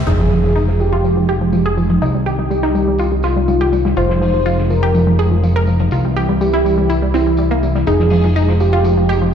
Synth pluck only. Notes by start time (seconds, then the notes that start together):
0.07 D#4
0.19 F3
0.31 F3
0.44 F3
0.56 D#4
0.68 F3
0.80 F3
0.93 F4
1.04 F3
1.17 F3
1.29 G4
1.41 F3
1.53 F3
1.66 G#4
1.78 F3
1.90 F3
2.02 D#4
2.14 G3
2.26 G4
2.39 G3
2.51 G3
2.63 D#4
2.75 G3
2.88 G3
2.99 F4
3.12 G3
3.24 F4
3.36 G3
3.48 G3
3.61 G4
3.73 G3
3.85 G3
3.97 F4
4.10 F3
4.21 F3
4.34 F3
4.46 F4
4.58 F3
4.70 F3
4.83 G4
4.95 F3
5.07 F3
5.19 G#4
5.32 F3
5.43 F3
5.56 A#4
5.68 F3
5.80 F3
5.92 F4
6.05 G3
6.17 G4
6.29 G3
6.41 G3
6.54 E4
6.65 G3
6.78 G3
6.90 E4
7.02 G3
7.14 C4
7.27 G3
7.39 G3
7.51 A#3
7.63 G3
7.75 G3
7.87 D#4
8.00 F3
8.12 F3
8.24 F3
8.36 D#4
8.48 F3
8.60 F3
8.73 F4
8.85 F3
8.97 F3
9.09 G4
9.22 F3